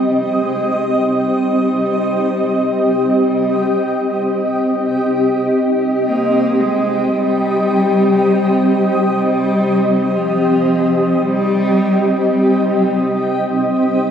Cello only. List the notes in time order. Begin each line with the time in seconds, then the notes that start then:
Already playing: G3
0.40 G#3
0.94 G3
3.01 G3
6.09 A#3
6.60 G#3
7.11 G3
9.13 G3
10.16 F3
11.19 G3
12.20 G3